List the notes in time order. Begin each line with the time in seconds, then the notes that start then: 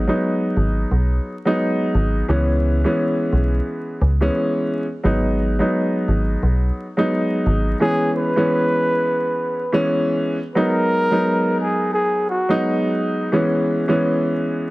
0.07 F#3 G#3 B3 D#4
0.57 G#1
0.91 B1
1.45 F#3 G#3 B3 D#4
1.95 G#1
2.28 C#2 E3 G#3 B3 C#4
2.84 E3 G#3 B3 C#4
3.33 B1
4.02 C#2
4.21 E3 G#3 B3 C#4
5.03 G#1 F#3 G#3 B3 D#4
5.59 F#3 G#3 B3 D#4
6.08 G#1
6.43 B1
6.97 F#3 G#3 B3 D#4
7.46 G#1
7.80 E3 G#3 B3 C#4 G#4
8.17 B4
8.36 E3 G#3 B3 C#4
9.72 E3 G#3 B3 C#4
10.55 F#3 G#3 B3 D#4 A#4
11.11 F#3 G#3 B3 D#4
11.60 G#4
11.93 G#4
12.29 F#4
12.49 F#3 G#3 B3 D#4
13.32 E3 G#3 B3 C#4
13.88 E3 G#3 B3 C#4